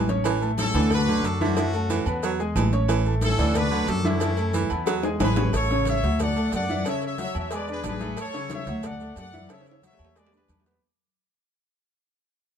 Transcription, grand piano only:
0.09 C#4 C#5 C#6
0.41 A3 A4 A5
0.74 D3 D4 D5
1.07 F#3 F#4 F#5
1.41 E3 E4 E5
1.58 E3 E4 E5
1.74 A3 A4 A5
2.07 B3 B4 B5
2.39 G#3 G#4 G#5
2.73 C#4 C#5 C#6
3.06 A3 A4 A5
3.39 D3 D4 D5
3.72 F#3 F#4 F#5
4.05 E3 E4 E5
4.21 E3 E4 E5
4.37 A3 A4 A5
4.70 B3 B4 B5
5.04 G#3 G#4 G#5
5.37 C#4 C#5 C#6
5.71 C#3 C#4 C#5
6.04 F#3 F#4 F#5
6.36 A3 A4 A5
6.69 E3 E4 E5
6.86 C#3 C#4 C#5
7.19 F#3 F#4 F#5
7.51 G#3 G#4 G#5
7.68 D4 D5 D6
8.01 A3 A4 A5
8.34 C#3 C#4 C#5
8.67 F#3 F#4 F#5
9.01 A3 A4 A5
9.33 E3 E4 E5
9.50 C#3 C#4 C#5
9.83 F#3 F#4 F#5
10.16 G#3 G#4 G#5
10.32 D4 D5 D6
10.66 B3 B4 B5

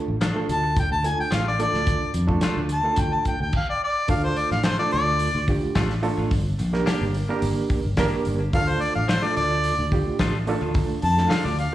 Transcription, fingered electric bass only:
0.08 A1
0.49 D2
0.91 D2
1.32 A1
1.73 D2
2.14 F2
2.57 D2
2.98 D2
3.26 muted fingered electric bass stroke
3.40 D2
4.09 D2
4.51 A1
4.94 D2
5.35 D2
5.75 A1
6.18 A1
6.32 G1
6.60 A#1
7.01 G1
7.42 G1
7.85 G1
8.27 G1
8.54 D2
8.96 A1
9.37 D2
9.79 D2
10.20 A1
10.61 D2
11.03 F2
11.45 D2

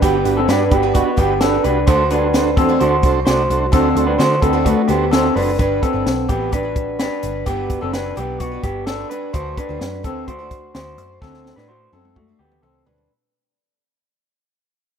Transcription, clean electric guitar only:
0.02 B3 G4
0.37 C4 A4
0.49 D4 B4
0.72 B3 G4
0.95 B3 F#4
1.18 B3 G4
1.41 D4 A4
1.64 D4 B4
1.87 F#4 C5
2.11 D4 B4
2.57 C4 A4
2.80 F#4 C5
3.25 F#4 C5
3.72 C4 A4
4.07 D4 B4
4.18 F#4 C5
4.42 C4 A4
4.65 A3 F#4
4.88 B3 G4
5.11 C4 A4
5.36 D4 B4
5.59 D4 B4
5.82 C4 A4
6.29 B3 G4
6.53 D4 B4
7.00 D4 B4
7.46 B3 G4
7.82 C4 A4
7.93 D4 B4
8.17 B3 G4
8.40 B3 F#4
8.64 B3 G4
8.86 D4 A4
9.10 D4 B4
9.33 F#4 C5
9.58 D4 B4
10.05 C4 A4
10.28 F#4 C5
10.75 F#4 C5
11.22 C4 A4
11.56 D4 B4
11.68 F#4 C5
11.93 C4 A4
12.16 A3 F#4
12.39 B3 G4
12.62 C4 A4
12.86 D4 B4

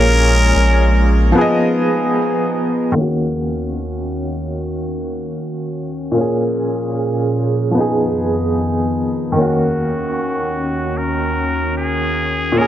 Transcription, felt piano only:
Already playing: A#2 A#3 G#4 C#5
1.32 F3 B3
1.38 G#4 D#5
2.92 D#3 A#3
2.98 C#4 F#4
6.12 A#2 A#3
6.17 C#4 G#4
7.71 F3 B3
7.77 D#4 G#4
9.32 D#3 A#3
9.38 C#4 F#4
12.52 A#2 A#3
12.58 C#4 G#4

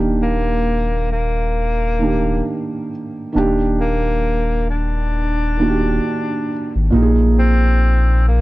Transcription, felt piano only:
Already playing: D#3 A#3 D4 G4
1.99 D#3 A#3 D4
2.04 G4
3.33 D#3 A#3 D4
3.38 G4
5.57 D#3 A#3 D4
5.63 F#4
5.69 G4
6.90 A#2 A#3 D#4
6.96 G4
7.02 G#4

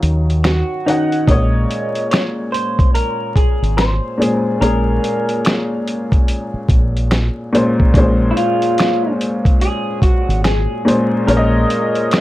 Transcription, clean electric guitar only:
0.45 F#4
0.86 D#4
1.28 D#5
2.11 C#5
2.52 C5
2.94 A#4
3.36 G#4
3.77 C5
4.61 A#4
8.31 E4
8.37 F4
9.62 G#4
10.03 F#4
10.44 G#4
11.28 A#4

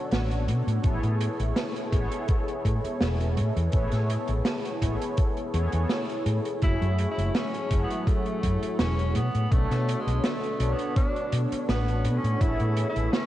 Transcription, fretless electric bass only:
0.12 A1
0.48 B2
0.67 A2
0.84 A1
1.03 A2
1.40 A1
1.93 A1
2.65 A2
2.84 muted fretless electric bass stroke
3.01 E1
3.37 A2
3.56 E2
3.73 A1
3.92 A2
4.29 A1
4.82 A1
5.54 E2
5.73 E2
6.26 A2
6.62 F#1
6.82 F#2
7.18 F#1
7.71 F#1
8.43 F#2
8.62 muted fretless electric bass stroke
8.79 E1
9.15 B2
9.35 A2
9.52 B1
9.71 B2
10.07 B1
10.60 B1
11.33 B2
11.52 muted fretless electric bass stroke
11.69 A1
12.05 B2
12.24 A2
12.41 A1
12.60 A2
12.96 A1

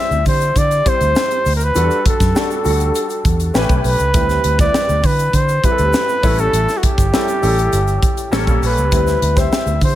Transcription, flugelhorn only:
Already playing: E5
0.28 C5
0.58 D5
0.88 C5
1.56 A#4
1.64 B4
2.08 A4
3.86 B4
4.60 D5
5.06 B4
5.35 C5
5.65 B4
6.40 A4
6.77 F#4
6.85 G4
8.65 B4
9.39 E5
9.84 C5

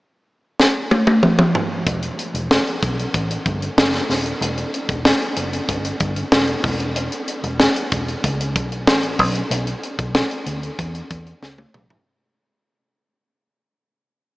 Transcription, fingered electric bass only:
1.87 E1
2.34 E1
2.83 B1
3.14 A1
3.46 G1
3.77 F#1
4.09 D#1
4.41 E1
4.89 E1
5.37 F#1
5.69 G1
6.00 G1
6.32 E1
6.64 E1
7.43 E1
7.92 E1
8.24 C#2
8.56 B1
8.87 A1
9.19 B1
9.51 B1
9.99 B1
10.46 D2
10.79 E2
11.11 E2
11.42 C#2
11.74 A#1

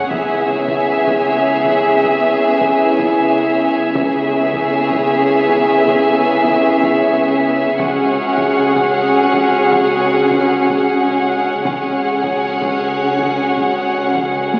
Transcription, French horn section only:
0.09 B3 E4
3.93 B3 E4
7.79 G#3 F#4
11.63 G#3 F#4

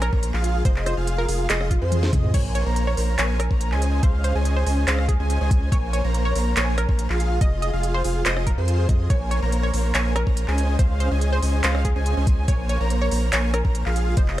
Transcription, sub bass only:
Already playing: A#1
0.13 A#1
0.34 A#1
0.65 F1
0.97 F1
1.28 F1
1.49 F1
1.82 F2
2.13 F2
2.34 A#1
2.66 A#1
2.97 A#1
3.19 A#1
3.51 A#1
3.72 C#2
4.03 C#2
4.35 C#2
4.66 C#2
4.87 C#2
5.20 C#2
5.41 C#2
5.72 A#1
6.04 A#1
6.35 A#1
6.57 A#1
6.89 A#1
7.10 A#1
7.41 F1
7.73 F1
8.05 F1
8.26 F1
8.58 F2
8.89 F2
9.10 A#1
9.42 A#1
9.74 A#1
9.95 A#1
10.27 A#1
10.48 C#2
10.79 C#2
11.11 C#2
11.42 C#2
11.64 C#2
11.96 C#2
12.17 C#2
12.48 A#1
12.80 A#1
13.12 A#1
13.33 A#1
13.65 A#1
13.86 A#1
14.17 F1

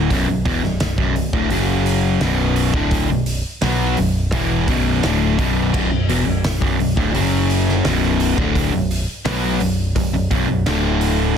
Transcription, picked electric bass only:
0.10 B0
0.28 B0
0.46 E1
0.64 B0
0.98 B0
1.16 B0
1.33 D1
1.51 F#1
2.22 B0
2.73 D1
3.10 B0
3.63 B1
3.98 B0
4.32 E1
4.68 B0
5.03 D1
5.38 B0
5.74 B0
5.92 B0
6.09 E1
6.26 B0
6.61 B0
6.79 B0
6.97 D1
7.14 F#1
7.85 B0
8.38 D1
8.72 B0
9.26 B1
9.61 B0
9.95 B0
10.14 B0
10.31 B0
10.48 B0
10.66 D1

